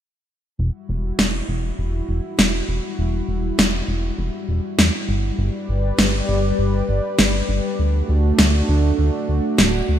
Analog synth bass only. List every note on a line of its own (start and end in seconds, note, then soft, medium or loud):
0.59 0.70 E1 loud
0.89 1.12 E1 medium
1.19 1.42 E1 medium
1.49 1.72 E1 medium
1.79 2.02 E1 medium
2.09 2.20 E1 medium
2.39 2.62 E1 medium
2.69 2.80 E1 medium
2.99 3.22 E1 medium
3.29 3.52 E1 medium
3.59 3.82 E1 loud
3.88 4.12 E1 medium
4.19 4.30 E1 medium
4.49 4.60 E1 medium
4.79 4.90 E2 medium
5.09 5.32 G1 medium
5.39 5.50 G1 loud
5.69 5.92 G1 medium
5.99 6.22 G1 medium
6.29 6.52 G1 loud
6.59 6.82 G1 medium
6.89 7.00 G1 medium
7.19 7.42 G1 medium
7.49 7.60 G1 medium
7.79 8.02 D2 medium
8.09 8.32 D2 medium
8.39 8.62 D2 loud
8.69 8.92 D2 loud
8.99 9.10 D2 medium
9.29 9.40 D2 medium
9.59 9.82 D1 loud
9.89 9.99 D2 medium